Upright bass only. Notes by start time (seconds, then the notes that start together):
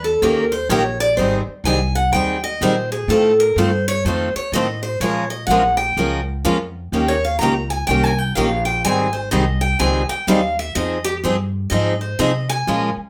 Already playing: E2
0.22 D#2
0.69 A#1
1.17 G#1
1.47 muted upright bass stroke
1.64 C2
2.12 D#2
2.61 A#2
3.08 A2
3.56 G2
4.05 F2
4.35 muted upright bass stroke
4.52 A2
5.00 A#2
5.47 A#1
5.97 C#2
6.45 F2
6.92 D#2
7.41 C#2
7.88 C2
8.37 A#1
8.85 G#1
9.33 C2
9.80 C#2
10.10 muted upright bass stroke
10.27 D#2
10.76 F2
11.24 G2
11.71 G#2
12.19 C3
12.67 A#2
12.97 muted upright bass stroke